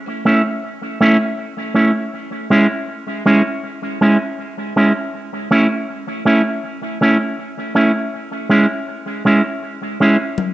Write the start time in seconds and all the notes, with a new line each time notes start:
0.25 A3 C#4 E4
1.01 A3 C#4 E4
1.74 A3 C#4 E4
2.50 G#3 C#4 E4
3.26 G#3 C#4 E4
4.01 G#3 C#4 E4
4.76 G#3 C#4 E4
5.51 A3 C#4 E4
6.25 A3 C#4 E4
7.01 A3 C#4 E4
7.75 A3 C#4 E4
8.49 G#3 C#4 E4
9.25 G#3 C#4 E4
10.00 G#3 C#4 E4
10.38 high tom